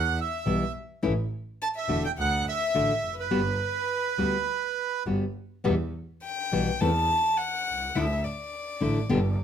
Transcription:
0.00 0.13 E2 loud
0.00 0.16 F#5 medium
0.00 0.20 F#5 medium
0.20 0.72 E5 medium
0.46 0.70 B1 medium
0.46 0.63 B2 medium
0.46 0.63 E3 medium
0.46 0.63 G3 medium
0.46 0.63 B3 medium
0.46 0.63 E4 medium
1.03 1.27 A1 medium
1.03 1.12 E3 medium
1.03 1.12 A3 medium
1.03 1.12 C#4 medium
1.03 1.12 E4 medium
1.62 1.68 A5 medium
1.62 1.69 A5 medium
1.76 2.02 E5 medium
1.76 2.03 E5 medium
1.88 2.13 E1 medium
1.88 2.05 D3 medium
1.88 2.06 A3 medium
1.88 2.06 D4 medium
1.88 2.06 F#4 medium
2.04 2.10 G5 medium
2.04 2.12 G5 medium
2.18 2.42 D2 loud
2.18 2.45 F#5 medium
2.18 2.46 F#5 medium
2.47 3.14 E5 medium
2.47 3.15 E5 medium
2.74 2.99 A1 medium
2.74 2.92 D3 medium
2.74 2.92 A3 medium
2.74 2.92 D4 medium
2.74 2.92 F#4 medium
3.04 3.31 F1 soft
3.19 5.03 B4 medium
3.31 3.56 G1 medium
3.31 3.40 G3 medium
3.31 3.40 B3 medium
3.31 3.41 F#4 medium
4.18 4.43 D2 medium
4.18 4.35 G3 medium
4.18 4.36 B3 medium
4.18 4.36 F#4 medium
5.06 5.31 G1 medium
5.06 5.24 G3 medium
5.06 5.24 B3 medium
5.06 5.24 F#4 medium
5.64 5.90 E2 medium
5.64 5.74 B2 medium
5.64 5.74 E3 medium
5.64 5.74 G3 medium
5.64 5.74 B3 medium
5.64 5.74 F#4 medium
6.23 6.81 G5 medium
6.52 6.77 B1 medium
6.52 6.69 B2 medium
6.52 6.69 E3 medium
6.52 6.69 G3 medium
6.52 6.69 B3 medium
6.52 6.70 F#4 medium
6.80 7.05 E2 loud
6.80 6.90 E3 medium
6.80 6.90 A3 medium
6.80 6.90 C4 medium
6.80 6.90 E4 medium
6.80 7.38 A5 medium
7.37 7.96 F#5 loud
7.67 7.96 C2 medium
7.95 8.20 D2 medium
7.95 8.05 D3 medium
7.95 8.05 A3 medium
7.95 8.05 D4 medium
7.95 8.05 E4 medium
7.95 8.25 E5 medium
8.24 9.39 D5 medium
8.81 9.06 A1 medium
8.81 8.98 D3 medium
8.81 8.98 A3 medium
8.81 8.98 D4 medium
8.81 8.99 E4 medium
9.09 9.34 G1 loud
9.09 9.19 B2 medium
9.09 9.19 D3 medium
9.09 9.19 G3 medium
9.09 9.19 B3 loud
9.09 9.19 G4 loud

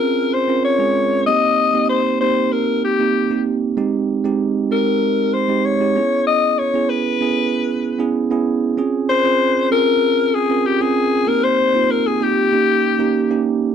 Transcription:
0.00 0.48 C4 medium
0.00 0.49 C#4 medium
0.00 0.49 F4 medium
0.00 0.80 G#4 loud
0.00 0.22 A#4 medium
0.00 0.35 A#4 loud
0.33 0.64 C5 medium
0.48 0.69 C4 medium
0.48 0.70 C#4 medium
0.48 0.70 F4 medium
0.48 0.70 A#4 medium
0.65 1.23 C#5 loud
0.79 1.10 G#3 medium
0.79 1.11 C#4 medium
0.79 1.11 F4 medium
0.79 1.11 G#4 medium
1.26 1.58 A#3 medium
1.26 1.58 C4 medium
1.26 1.58 D#4 medium
1.26 1.58 G4 medium
1.26 1.86 D#5 loud
1.74 2.05 A#3 medium
1.74 2.05 C4 medium
1.74 2.05 D#4 medium
1.74 2.05 G4 medium
1.89 2.19 C5 medium
2.21 2.72 A#3 medium
2.21 2.72 C4 medium
2.21 2.73 D#4 medium
2.21 2.73 G4 medium
2.21 2.54 C5 loud
2.53 2.84 A#4 medium
2.85 3.43 G4 medium
2.99 3.20 A#3 medium
2.99 3.20 C4 medium
2.99 3.20 D#4 medium
2.99 3.20 G4 medium
3.30 3.61 A#3 medium
3.30 3.61 C4 medium
3.30 3.62 D#4 medium
3.30 3.62 G4 medium
3.77 4.08 G#3 medium
3.77 4.08 C4 medium
3.77 4.08 D#4 medium
3.77 4.08 G4 medium
4.24 4.55 G#3 medium
4.24 4.55 C4 medium
4.24 4.55 D#4 medium
4.24 4.56 G4 medium
4.71 5.22 G#3 medium
4.71 5.22 C4 medium
4.71 5.23 D#4 medium
4.71 5.23 G4 medium
4.71 5.35 A#4 medium
5.34 5.67 C5 medium
5.48 5.69 G#3 medium
5.48 5.70 C4 medium
5.48 5.70 D#4 medium
5.48 5.70 G4 medium
5.65 6.26 C#5 loud
5.80 5.96 G#3 medium
5.80 5.96 C4 medium
5.80 5.96 D#4 medium
5.80 5.97 G4 medium
5.96 6.59 B3 medium
5.96 6.59 C#4 medium
5.96 6.59 E4 medium
5.96 6.59 G#4 medium
6.27 6.60 D#5 loud
6.58 6.91 C#5 loud
6.74 7.05 B3 medium
6.74 7.05 C#4 medium
6.74 7.05 E4 medium
6.74 7.06 G#4 medium
6.89 8.15 B4 medium
7.21 7.72 B3 medium
7.21 7.72 C#4 medium
7.21 7.73 E4 medium
7.21 7.73 G#4 medium
7.99 8.20 B3 medium
7.99 8.20 C#4 medium
7.99 8.20 E4 medium
7.99 8.20 G#4 medium
8.31 8.61 B3 medium
8.31 8.62 C#4 medium
8.31 8.62 E4 medium
8.31 8.62 G#4 loud
8.77 9.08 C4 medium
8.77 9.08 C#4 medium
8.77 9.09 F4 medium
8.77 9.09 G#4 medium
9.09 9.68 C5 loud
9.24 9.55 C4 medium
9.24 9.55 C#4 medium
9.24 9.55 F4 medium
9.24 9.55 G#4 medium
9.71 10.22 C4 medium
9.71 10.23 C#4 medium
9.71 10.23 F4 medium
9.71 10.23 G#4 medium
9.71 10.36 A#4 loud
10.35 10.68 G#4 loud
10.49 10.70 C4 medium
10.49 10.70 C#4 medium
10.49 10.70 F4 medium
10.49 10.71 A#4 medium
10.66 10.83 G4 medium
10.80 11.11 C4 medium
10.80 11.11 C#4 medium
10.80 11.12 F4 medium
10.80 11.29 G#4 loud
10.80 11.12 G#4 medium
11.27 11.58 A#3 medium
11.27 11.58 C4 medium
11.27 11.58 D#4 medium
11.27 11.58 G4 medium
11.27 11.45 A#4 loud
11.44 11.92 C5 loud
11.74 12.05 A#3 medium
11.74 12.05 C4 medium
11.74 12.05 D#4 medium
11.74 12.05 F4 medium
11.91 12.08 A#4 medium
12.07 12.25 G#4 medium
12.21 12.51 A#3 medium
12.21 12.53 C4 medium
12.21 12.52 D#4 medium
12.21 12.52 G4 medium
12.21 13.47 G4 loud
12.52 12.90 A#3 medium
12.52 12.90 C#4 medium
12.52 12.90 D#4 medium
12.52 12.90 G4 medium
12.99 13.20 A#3 medium
12.99 13.20 C#4 medium
12.99 13.20 D#4 medium
12.99 13.20 G4 loud
13.30 13.61 A#3 medium
13.30 13.61 C#4 medium
13.30 13.61 D#4 medium
13.30 13.62 G4 loud

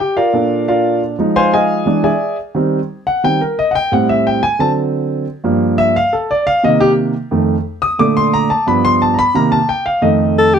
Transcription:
0.00 0.16 G4 medium
0.00 0.16 G5 medium
0.17 0.64 F4 medium
0.17 0.64 A#4 medium
0.17 0.64 D5 medium
0.17 0.64 F5 medium
0.33 1.15 A#2 medium
0.33 1.15 D4 medium
0.33 1.15 A4 soft
0.68 1.00 F4 medium
0.68 1.00 A#4 medium
0.68 1.00 D5 medium
0.68 1.00 F5 medium
1.19 1.83 F3 medium
1.19 1.84 G#3 soft
1.19 1.84 D#4 medium
1.36 1.53 C5 medium
1.36 1.53 F5 medium
1.36 1.52 G#5 medium
1.36 1.53 C6 loud
1.54 2.01 G#4 medium
1.54 1.85 D#5 medium
1.54 1.85 F5 medium
1.54 2.01 G#5 medium
1.86 2.09 E3 soft
1.86 2.10 G#3 medium
1.86 2.10 D4 medium
2.04 2.36 G#4 medium
2.04 2.36 D5 medium
2.04 2.36 E5 medium
2.04 2.36 G#5 medium
2.55 2.78 D#3 medium
2.55 2.78 G3 medium
2.55 2.78 C4 medium
3.07 3.23 F#5 medium
3.24 3.39 D#3 soft
3.24 3.39 G3 soft
3.24 3.39 C4 medium
3.24 3.40 G5 medium
3.41 3.57 A#4 medium
3.59 3.75 D#5 medium
3.71 3.73 F#5 medium
3.75 3.91 G5 loud
3.92 4.40 A2 medium
3.92 4.40 G3 soft
3.92 4.41 C4 medium
3.92 4.09 F#5 medium
4.09 4.25 E5 medium
4.27 4.43 G5 medium
4.43 4.59 G#5 loud
4.59 5.24 D3 medium
4.59 5.24 F#3 soft
4.59 5.25 C4 medium
4.59 4.70 A5 medium
5.44 5.93 G2 medium
5.44 5.93 F3 medium
5.44 5.93 A#3 medium
5.78 5.95 E5 loud
5.96 6.12 F5 loud
6.13 6.29 A4 medium
6.31 6.47 D5 medium
6.47 6.63 F5 loud
6.64 7.12 C3 medium
6.64 7.12 D#3 medium
6.64 7.12 A#3 medium
6.64 6.80 D#5 medium
6.80 6.91 G4 loud
7.31 7.54 F2 medium
7.31 7.54 D#3 medium
7.31 7.55 A3 medium
7.82 7.99 D#6 loud
7.99 8.47 A#2 medium
7.99 8.48 D3 medium
7.99 8.48 A3 medium
7.99 8.16 D6 medium
8.17 8.33 C6 loud
8.34 8.50 A#5 loud
8.50 8.67 A5 medium
8.67 9.15 G2 medium
8.67 9.16 F3 soft
8.67 9.16 B3 medium
8.67 8.84 B5 medium
8.85 9.01 C6 loud
9.02 9.18 A5 medium
9.14 9.17 A#5 medium
9.19 9.35 B5 loud
9.35 9.57 C3 medium
9.35 9.58 D#3 medium
9.35 9.58 A#3 medium
9.35 9.52 A#5 medium
9.52 9.68 A5 loud
9.69 9.86 G5 medium
9.86 10.02 F5 medium
10.02 10.59 F2 medium
10.02 10.59 D#3 medium
10.02 10.59 A3 medium
10.02 10.50 D#5 medium
10.39 10.56 A4 loud
10.54 10.59 G4 loud

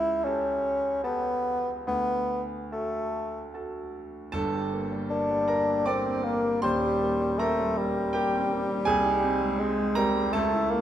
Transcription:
0.00 0.22 C#2 medium
0.00 0.26 E4 medium
0.24 1.03 C#4 medium
0.24 1.00 G4 soft
0.24 1.01 A4 soft
0.24 1.01 A5 soft
1.03 1.70 B3 medium
1.03 1.83 G4 soft
1.03 1.84 A4 soft
1.03 1.84 A5 soft
1.87 2.69 D2 medium
1.87 2.42 B3 medium
2.72 3.49 A3 medium
2.72 3.49 F#4 soft
2.72 3.49 A4 soft
2.72 3.50 A5 soft
3.54 4.31 F#4 soft
3.54 4.31 A4 soft
3.54 4.31 A5 soft
4.32 6.59 G1 medium
4.32 6.59 G2 medium
4.32 5.45 A4 medium
4.32 5.49 A5 loud
4.54 4.85 G4 soft
4.73 5.04 A#3 soft
4.92 5.23 G3 soft
5.10 5.42 A#3 soft
5.10 5.88 D4 medium
5.31 5.61 G3 soft
5.48 5.80 A#3 soft
5.48 5.84 A#4 medium
5.48 5.87 A#5 medium
5.69 5.99 G4 soft
5.86 6.18 A#3 soft
5.86 6.25 C4 medium
5.86 6.59 D5 medium
5.86 6.63 D6 medium
6.06 6.25 C4 soft
6.24 6.62 A#3 medium
6.24 6.56 A#3 soft
6.44 6.64 G3 soft
6.62 8.83 D#1 medium
6.62 8.84 D#2 medium
6.62 7.40 G3 medium
6.62 7.36 C5 medium
6.62 7.39 C6 loud
6.83 7.14 G4 soft
7.02 7.33 A#3 soft
7.21 7.52 G3 soft
7.39 7.79 A3 medium
7.39 7.71 A#3 soft
7.39 8.11 A#4 medium
7.39 8.15 A#5 medium
7.59 7.89 G3 soft
7.77 9.60 G3 medium
7.77 8.08 A#3 medium
7.96 8.13 G4 soft
8.13 8.44 A#3 medium
8.13 8.83 G4 medium
8.13 8.87 G5 medium
8.33 8.52 C4 soft
8.51 8.80 A#3 medium
8.69 8.87 G3 soft
8.85 10.30 C2 medium
8.85 9.92 G#4 medium
8.85 9.96 G#5 loud
9.05 9.34 D#4 soft
9.24 9.53 C4 medium
9.42 9.71 G#3 soft
9.59 9.98 G#3 medium
9.59 9.89 C4 medium
9.79 10.08 G#3 soft
9.95 10.34 G3 medium
9.95 10.27 C4 medium
9.95 10.31 A#4 medium
9.95 10.33 A#5 loud
10.16 10.34 G#3 medium
10.33 10.81 C#2 medium
10.33 10.71 A3 medium
10.33 10.81 A4 medium
10.33 10.81 A5 loud
10.53 10.81 E4 medium
10.70 10.81 A#3 medium

